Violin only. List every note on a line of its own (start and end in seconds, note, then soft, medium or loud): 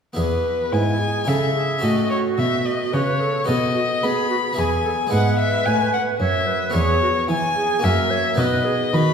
0.17 0.74 B4 medium
0.73 1.30 G#5 medium
1.28 1.85 E5 medium
1.84 2.10 D#5 medium
2.11 2.19 C#5 medium
2.38 2.67 E5 medium
2.65 2.96 D#5 medium
2.94 3.48 C#5 medium
3.49 4.05 D#5 medium
4.04 4.60 B5 medium
4.59 5.13 G#5 medium
5.13 5.39 F#5 medium
5.40 5.67 E5 medium
5.66 5.93 G#5 medium
5.94 6.02 F#5 medium
6.21 6.74 E5 medium
6.75 7.28 C#5 medium
7.31 7.86 G#5 medium
7.84 8.41 E5 medium
8.39 8.96 D#5 medium
8.94 9.14 B5 medium